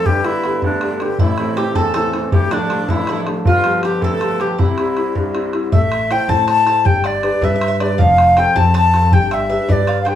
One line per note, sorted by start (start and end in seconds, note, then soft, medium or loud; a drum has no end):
0.06 1.16 G1 medium
0.06 0.43 G2 medium
0.06 0.26 G4 loud
0.06 bodhran medium
0.24 0.42 D3 medium
0.24 0.43 G3 soft
0.24 0.43 B3 medium
0.24 0.62 E4 loud
0.24 bodhran medium
0.44 0.74 D3 soft
0.44 0.74 G3 soft
0.44 0.74 B3 medium
0.44 bodhran soft
0.62 1.00 D2 medium
0.62 1.03 D4 medium
0.62 bodhran medium
0.81 1.00 D3 medium
0.81 1.00 G3 soft
0.81 1.00 B3 medium
0.81 bodhran medium
1.00 1.16 D3 soft
1.00 1.16 G3 soft
1.00 1.16 B3 medium
1.00 1.20 G4 medium
1.00 bodhran medium
1.19 2.29 A1 medium
1.19 1.56 A2 medium
1.19 1.54 E4 medium
1.19 1.59 E4 medium
1.19 bodhran medium
1.38 1.57 E3 medium
1.38 1.58 A3 soft
1.38 1.58 C4 medium
1.38 bodhran medium
1.57 1.88 E3 medium
1.57 1.88 A3 soft
1.57 1.89 C4 medium
1.57 1.74 G4 medium
1.57 1.78 G4 loud
1.57 bodhran medium
1.75 2.13 E2 medium
1.75 1.93 A4 medium
1.75 1.95 A4 loud
1.75 bodhran medium
1.94 2.13 E3 medium
1.94 2.13 A3 medium
1.94 2.13 C4 medium
1.94 2.29 A4 medium
1.94 2.30 A4 medium
1.94 bodhran medium
2.13 2.29 E3 soft
2.13 2.29 A3 soft
2.13 2.29 C4 medium
2.13 bodhran medium
2.32 3.42 D1 medium
2.32 2.69 D2 medium
2.32 2.51 G4 medium
2.32 2.54 G4 loud
2.32 bodhran medium
2.51 2.69 F3 medium
2.51 2.70 A3 soft
2.51 2.86 D4 medium
2.51 2.69 D4 medium
2.51 2.91 D4 medium
2.51 bodhran medium
2.70 3.00 F3 medium
2.70 3.01 A3 medium
2.70 3.00 D4 medium
2.70 bodhran medium
2.89 3.26 A1 medium
2.89 3.21 E4 medium
2.89 3.07 E4 medium
2.89 bodhran medium
3.07 3.25 F3 medium
3.07 3.26 A3 soft
3.07 3.27 D4 medium
3.07 3.26 E4 medium
3.07 bodhran medium
3.27 3.42 F3 medium
3.27 3.42 A3 soft
3.27 3.43 D4 medium
3.27 bodhran medium
3.45 4.55 G1 medium
3.45 3.82 G2 medium
3.45 3.81 F4 loud
3.45 3.81 F4 medium
3.45 bodhran medium
3.64 3.82 F3 medium
3.64 3.82 G3 soft
3.64 3.83 B3 medium
3.64 bodhran medium
3.83 4.14 F3 medium
3.83 4.14 G3 soft
3.83 4.14 B3 medium
3.83 4.04 G4 medium
3.83 4.02 G4 medium
3.83 bodhran medium
4.01 4.38 D2 medium
4.01 4.42 A4 loud
4.01 4.40 A4 medium
4.01 bodhran medium
4.20 4.38 F3 medium
4.20 4.38 G3 soft
4.20 4.39 B3 medium
4.20 bodhran medium
4.39 4.55 F3 soft
4.39 4.55 G3 soft
4.39 4.55 B3 medium
4.39 4.58 G4 medium
4.39 4.61 G4 medium
4.39 bodhran medium
4.58 5.68 C2 medium
4.58 4.96 C3 medium
4.58 5.49 E4 medium
4.58 5.53 E4 medium
4.58 bodhran medium
4.78 4.95 G3 medium
4.78 4.96 C4 soft
4.78 4.96 E4 medium
4.78 bodhran medium
4.97 5.27 G3 soft
4.97 5.27 C4 soft
4.97 5.27 E4 medium
4.97 bodhran medium
5.15 5.52 G2 medium
5.15 bodhran medium
5.33 5.51 G3 soft
5.33 5.52 C4 soft
5.33 5.53 E4 medium
5.33 bodhran medium
5.53 5.68 G3 soft
5.53 5.69 C4 soft
5.53 5.69 E4 medium
5.53 bodhran medium
5.72 6.15 A1 medium
5.72 6.82 A3 medium
5.72 6.11 E5 medium
5.72 6.13 E5 loud
5.72 bodhran medium
5.92 bodhran medium
6.11 6.27 E4 medium
6.11 6.28 A4 soft
6.11 6.28 C5 medium
6.11 6.28 G5 medium
6.11 6.31 G5 loud
6.11 bodhran medium
6.28 6.87 A2 loud
6.28 6.65 E4 medium
6.28 6.65 A4 soft
6.28 6.66 C5 medium
6.28 6.46 A5 loud
6.28 6.48 A5 loud
6.28 bodhran medium
6.48 6.66 A5 medium
6.48 6.88 A5 loud
6.48 bodhran medium
6.66 6.85 E4 medium
6.66 6.85 A4 soft
6.66 6.85 C5 medium
6.66 6.84 A5 medium
6.66 bodhran medium
6.85 7.28 G1 medium
6.85 7.95 G3 medium
6.85 7.03 G5 medium
6.85 7.08 G5 loud
6.85 bodhran medium
7.04 7.43 D5 medium
7.04 7.46 D5 loud
7.04 bodhran medium
7.23 7.40 D4 medium
7.23 7.40 G4 soft
7.23 7.41 B4 medium
7.23 bodhran medium
7.41 8.00 G2 loud
7.41 7.79 D4 medium
7.41 7.79 G4 soft
7.41 7.79 B4 medium
7.41 7.54 E5 medium
7.41 7.81 E5 loud
7.41 bodhran medium
7.56 7.67 E5 medium
7.61 bodhran medium
7.68 7.81 E5 medium
7.80 7.98 D4 soft
7.80 7.98 G4 soft
7.80 7.99 B4 medium
7.80 8.00 D5 medium
7.80 8.03 D5 medium
7.80 bodhran medium
7.98 8.42 F1 medium
7.98 9.09 F3 medium
7.98 8.37 F5 medium
7.98 8.40 F5 loud
7.98 bodhran medium
8.18 bodhran medium
8.37 8.54 C4 medium
8.37 8.55 F4 medium
8.37 8.55 A4 medium
8.37 8.54 G5 medium
8.37 8.59 G5 loud
8.37 bodhran medium
8.56 9.14 F2 loud
8.56 8.92 C4 medium
8.56 8.92 F4 soft
8.56 8.93 A4 medium
8.56 8.73 A5 medium
8.56 8.75 A5 loud
8.56 bodhran medium
8.74 9.12 A5 medium
8.74 9.15 A5 loud
8.74 bodhran medium
8.93 9.12 C4 soft
8.93 9.12 F4 soft
8.93 9.12 A4 medium
8.93 bodhran medium
9.12 9.56 G1 loud
9.12 10.15 G3 medium
9.12 9.30 G5 medium
9.12 9.36 G5 loud
9.12 bodhran medium
9.31 9.49 E5 medium
9.31 9.74 E5 loud
9.31 bodhran medium
9.49 9.66 D4 medium
9.49 9.67 G4 medium
9.49 9.67 B4 medium
9.49 9.67 E5 medium
9.68 10.15 G2 loud
9.68 10.05 D4 medium
9.68 10.05 G4 soft
9.68 10.06 B4 medium
9.68 9.87 D5 medium
9.68 bodhran medium
9.72 10.01 D5 medium
9.87 10.05 F5 medium
9.87 bodhran medium
10.02 10.10 F5 medium
10.02 10.15 G5 medium
10.06 10.15 D4 soft
10.06 10.15 G4 soft
10.06 10.15 B4 medium
10.06 10.15 G5 medium
10.06 bodhran medium